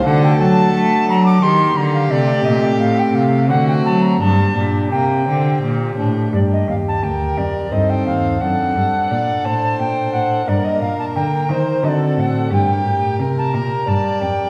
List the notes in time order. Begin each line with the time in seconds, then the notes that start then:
0.00 A3 D4 F#4
0.05 D3 A4 F#5
0.23 G5
0.39 F#3 A5
0.73 A3
1.08 F#3 A#5
1.26 D6
1.40 D#3 A#3 G4 A#4 C6
1.76 D3 A#5
1.94 F5
2.07 C3 A3 C4 A4 D5
2.11 C3
2.44 A#2 D#5
2.63 G5
2.79 A2 F5
2.99 G5
3.15 C3 F5
3.46 D3 A3 C4 F#4 A4 F#5
3.51 D3
3.68 G5
3.85 F#3 A5
4.02 A#5
4.17 A#3 D4 G4 A5
4.21 G2
4.57 A#2
4.92 C3 A#3 G5
5.28 D3 C4
5.63 A#2
5.98 A2 D4
6.28 A#3 D4 G4
6.33 G2 D5
6.53 D#5
6.68 D#2 F5
6.88 A5
7.03 D2 A#4 G5
7.37 F2 D5
7.67 C4 D#4 A4
7.71 G2 C5 D#5
7.90 G5
8.06 D#2 F5
8.36 C4 D4 A4
8.40 F#2 A4 F#5
8.76 G2
9.09 A#2 D5
9.45 A2 C5 A5
9.79 A#2 G5
10.13 A2 F#5
10.43 A#3 D4 A#4
10.47 G2 A#4 D5
10.64 D#5
10.81 A#2 F5
10.99 A5
11.15 D3 G5
11.50 D#3 C5
11.79 C4 F#4 A4
11.84 D3 A4 D#5
11.88 D5
12.17 A2 F#5
12.47 D4 G4 A#4
12.51 G2 G4 G5
12.85 A2
13.19 C3 A#4
13.38 A5
13.54 A#2 A#5
13.88 G2 D5 A5
14.22 F2 G5